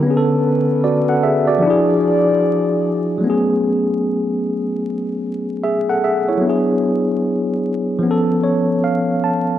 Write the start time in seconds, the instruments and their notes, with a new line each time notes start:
0.00 tine electric piano D3 B3
0.04 brass ensemble D3 C#4 A4 B4, tine electric piano C#4
0.11 tine electric piano G#4
0.17 tine electric piano A4
0.84 tine electric piano F#4 D5
1.09 tine electric piano A4 F#5
1.23 tine electric piano G#4 E5
1.47 tine electric piano F#4 D5
1.58 tine electric piano F3 D4
1.64 brass ensemble F3 E4 G#4 D5, tine electric piano E4
1.70 tine electric piano G#4
3.18 tine electric piano F#3 A3
3.24 tine electric piano B3 C#4
3.30 tine electric piano G#4
5.63 tine electric piano G#4 E5
5.89 tine electric piano A4 F#5
6.04 tine electric piano G#4 E5
6.29 tine electric piano E4 C#5
6.38 tine electric piano F#3 B3
6.46 tine electric piano D4
6.50 tine electric piano G#4
7.99 tine electric piano F3
8.03 tine electric piano B3
8.07 tine electric piano C#4 A4
8.43 tine electric piano C#5
8.84 tine electric piano F5
9.24 tine electric piano A5